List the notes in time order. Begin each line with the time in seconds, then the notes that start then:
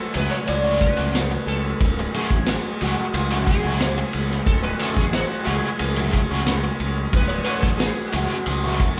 Already playing: F#3 A3 A4 G#5
0.14 C#2 F#3 A3 C#4 F#4 B4, ride, shaker
0.31 C#5
0.46 C#2 D5, muted overdriven electric guitar stroke, ride, shaker
0.64 F#3 A3 C#4 F#4, shaker
0.80 B4, kick, ride, shaker
0.97 C#2 F#3 A3 C#4 F#4
1.14 snare, ride, shaker
1.31 muted overdriven electric guitar stroke
1.47 C#2 A4, ride
1.79 C#1, kick, ride, shaker
1.99 muted overdriven electric guitar stroke
2.14 F#3 A3 C#4 F#4 G#4, ride, shaker
2.31 A1, kick
2.46 muted overdriven electric guitar stroke, snare, ride, shaker
2.81 C#2 F#3 A3 C#4 F#4, ride, shaker
3.14 C#2 F4, muted overdriven electric guitar stroke, ride, shaker
3.31 F#3 A3 C#4 F#4, shaker
3.47 G#4, kick, ride, shaker
3.63 C#2 F#3 A3 C#4 F#4
3.80 snare, ride, shaker
3.98 muted overdriven electric guitar stroke
4.13 C#2, ride, shaker
4.30 snare
4.46 C#1 A4, kick, ride, shaker
4.62 B4, muted overdriven electric guitar stroke
4.79 F#3 A3 C#4 F#4 A4, ride, shaker
4.97 A1 G#4, kick
5.12 F#4, muted overdriven electric guitar stroke, snare, ride, shaker
5.43 F#3 A3 C#4 G#4
5.47 C#2 F#4, ride, shaker
5.79 C#2, muted overdriven electric guitar stroke, ride, shaker
5.96 F#3 A3 C#4 F#4, shaker
6.12 kick, ride, shaker
6.30 C#2 F#3 A3 C#4 F#4
6.45 snare, ride, shaker
6.64 muted overdriven electric guitar stroke
6.79 C#2, ride, shaker
7.12 C#1 B4, kick, ride, shaker
7.28 C#5, muted overdriven electric guitar stroke, shaker
7.44 F#3 A3 C#4 F#4 B4, ride, shaker
7.60 A1 A4, kick, shaker
7.77 G#4, muted overdriven electric guitar stroke, snare, ride, shaker
7.97 shaker
8.07 F#4
8.13 C#2 F#3 A3 C#4 F#4, ride, shaker
8.46 C#2, muted overdriven electric guitar stroke, ride, shaker
8.64 F#3 A3 C#4 F#4, shaker
8.80 kick, ride, shaker
8.97 shaker